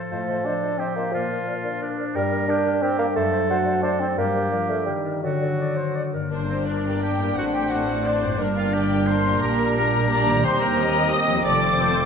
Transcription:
Already playing: A2 F3 F4 A4 C5
0.11 A2 F3 A3 C5 D#5
0.28 F3 C5 D#5
0.45 D4 C5 D#5
0.62 F4 C5 D#5
0.78 C4 G4 C5 D#5
0.95 A#3 F4 C5 D#5
1.12 A#2 F3 A#3 F4 A#4 D5
1.30 A#4 D5
1.47 A#4 D5
1.63 D4 A#4 D5
1.80 D4 A#4 D5
1.97 A#4 D5
2.14 G2 G3 A#4 D5
2.32 A#3 A#4 D5
2.48 D4 G4 A#4 D5
2.65 D4 A#4 D5
2.81 C4 G4 A#4 D5
2.98 A#3 A#4 D5
3.15 F#2 F#3 A3 A4 C5 D5
3.32 A3 C5 D5
3.48 F#4 C5 D5
3.65 A4 C5 D5
3.82 D4 A4 C5 D5
4.00 C4 A4 C5 D5
4.17 G2 G3 A#3 G4 A#4 D5
4.33 G3 A#4 D5
4.50 F3 A#4 D5
4.68 A3 G4 A#4 D5
4.86 D#3 G3 A#4 D5
5.03 D4 A#4 D5
5.23 D3 F#3 F#4 A4 D5
5.41 D4 A4 D5
5.59 A4 D5
5.76 C5 D5
5.95 D5 D6
6.13 G2 A#4 D5
6.18 A#3 D4
6.27 D4 D5
6.31 G1 G2 A#3 D4 A#4 C5
6.48 A#3 C4 G4 C5
6.66 D4 A#4 D5
6.86 A#3 G4
7.01 D4 G4 G5
7.18 A2 A#3 G4
7.23 C4
7.27 D4
7.31 C4 D5 F#5
7.36 A1 A2 A3 D4 F#4 A4 C5
7.52 C4 G4 G5
7.57 F#4
7.69 A3 D4 F#4 F#5
7.91 C4 F#4
8.04 A3 D4 C5 D5
8.22 G2 C4 F#4
8.26 A#3
8.30 D4
8.35 D5
8.39 G1 G2 A#3 D4 A#4
8.56 A#3 F4 G4 F5
8.73 D4 G4 D5 G5
8.91 A#3 G4
9.06 D4 A#4 C5 C6
9.24 A#2 A#3 G4
9.29 A#3
9.33 G4
9.38 G4 D5
9.42 A#1 A#2 G3 D4 G4 A#4 A#5
9.60 A#3 A#4
9.76 D4 G4 A#4 A#5
9.92 A#3 A#4
10.10 D4 G4 A#4 D5 A#5
10.25 D#3 A#3 A#4
10.30 C4
10.34 G4
10.39 C5
10.44 D#2 A#3 C4 G4 C5 C6
10.60 C4 A#4 A#5
10.77 A#3 G4 D#5
10.96 C4 A#4
11.10 A#3 G4 D#5 D#6
11.27 F3 C4 A#4
11.32 C4
11.36 F4
11.40 A4 D6
11.45 F1 F2 A3 A4 D5 D6
11.63 C4 C5
11.78 A3 A4 C5
11.95 C4 C5

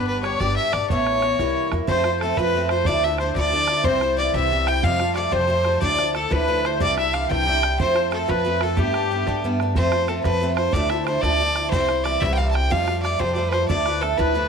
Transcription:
Already playing: G1 G3 B3 D4 G4
0.07 B4
0.23 G3 B3 D4 G4 C#5, bodhran
0.39 G1 G3 B3 D4 G4 D5, bodhran
0.56 E5
0.73 G#1 B3 D4 G4 D5, bodhran
0.90 A1 A2 E3 B3 C#4 E4 C#5, bodhran
0.99 bodhran
1.07 bodhran
1.22 E3 B3 C#4 E4, bodhran
1.39 C2 C3 E3 G3 A#3 E4, bodhran
1.72 E2 G3 A#3 E4, bodhran
1.87 F2 F3 A3 C4 F4 C5, bodhran
2.04 A3 C4 F4, bodhran
2.20 F3 A3 A4, bodhran
2.24 C4 F4
2.36 F2 A3 C4 F4 B4, bodhran
2.40 F3
2.53 F3 A3 C4, bodhran
2.57 F4
2.69 C4 F4 C5, bodhran
2.74 A3
2.85 D2 A2 F3 A3 D4 E4 D5, bodhran
3.04 F3 A3 D4 E4 E5
3.18 F3 A3 D4 C5, bodhran
3.23 E4
3.35 D2 A2 F3 A3 D4 E4 D5, bodhran
3.52 F3 A3 D4 E4, bodhran
3.68 F3 A3 D4 E4, bodhran
3.84 C2 C3 E3 G3 C4 E4 C5, bodhran
4.01 G3 C4 E4, bodhran
4.17 E3 G3 C4 E4 D5
4.34 C2 C3 E3 G3 C4 E4 E5, bodhran
4.51 E3 G3 C4 E4, bodhran
4.66 G3 C4 E4 G5, bodhran
4.83 F2 C3 F3 G3 A3 F4 F5, bodhran
4.99 F3 G3 A3 F4, bodhran
5.15 F3 G3 A3 F4 D5, bodhran
5.31 F2 C3 F3 G3 A3 F4 C5, bodhran
5.47 F3 G3 A3 F4, bodhran
5.65 F3 G3 A3 F4, bodhran
5.81 D2 A2 F3 A3 D4 E4 D5, bodhran
5.97 F3 A3 D4 E4, bodhran
6.14 F3 A3 D4 E4 A4, bodhran
6.30 D2 A2 F3 A3 D4 E4 B4, bodhran
6.48 F3 A3 D4 E4, bodhran
6.60 E4 B4
6.64 F3 A3 D4 C5, bodhran
6.80 C2 C3 E3 G3 D4 E4 D5, bodhran
6.96 G3 D4 E4 E5, bodhran
7.13 E3 G3 D4 E4 F5, bodhran
7.28 C2 C3 E3 G3 D4 E4 G5, bodhran
7.46 E3 G3 D4 E4, bodhran
7.62 G3 D4 E4, bodhran
7.79 F2 F3 A3 C4 F4 C5, bodhran
7.94 A3 C4 F4, bodhran
8.11 F3 A3 C4 F4 A4, bodhran
8.28 F2 F3 A3 C4 F4 B4, bodhran
8.45 F3 A3 C4 F4, bodhran
8.61 A3 C4 F4 A4, bodhran
8.77 G2 G3 A3 B3 D4 G4, bodhran
8.94 A3 B3 D4, bodhran
9.11 G3 A3 B3 D4
9.27 G2 G3 A3 B3 D4, bodhran
9.43 G3 A3 B3 D4, bodhran
9.60 A3 B3 D4, bodhran
9.75 F2 F3 A3 C4 F4 C5, bodhran
9.92 A3 C4 F4, bodhran
10.07 F3 A3 C4 F4 A4, bodhran
10.24 F2 F3 A3 C4 F4 B4, bodhran
10.41 F3 A3 C4 F4, bodhran
10.56 A3 F4 C5, bodhran
10.60 C4
10.73 D2 A2 F3 A3 D4 E4 D5, bodhran
10.89 F3 A3 D4 E4 E5, bodhran
11.06 F3 A3 D4 E4 C5, bodhran
11.21 D2 A2 F3 A3 D4 E4 D5, bodhran
11.38 F3 A3 D4 E4, bodhran
11.56 F3 A3 D4 E4, bodhran
11.71 C2 C3 E3 G3 C4 E4 C5, bodhran
11.89 G3 C4 E4, bodhran
12.04 E3 G3 C4 E4 D5, bodhran
12.20 C2 C3 E3 G3 C4 E4 E5, bodhran
12.34 E3 F5 G5
12.38 G3 C4 E4, bodhran
12.51 E4 G5 A5
12.55 G3 C4, bodhran
12.70 F2 C3 F3 G3 A3 F4 F5, bodhran
12.87 F3 G3 A3 F4, bodhran
13.03 F3 G3 A3 F4 D5, bodhran
13.19 F2 C3 F3 G3 A3 F4 C5, bodhran
13.33 F3 G3 A3 C5 D5, bodhran
13.38 F4
13.49 A3 F4 B4 C5, bodhran
13.53 F3 G3
13.69 D2 A2 F3 A3 D4 E4 D5, bodhran
13.85 F3 A3 D4 E4 B4, bodhran
14.01 F3 A3 D4 E4 A4, bodhran
14.18 D2 A2 F3 A3 D4 E4 B4, bodhran
14.34 F3 A3 D4 E4 B4, bodhran

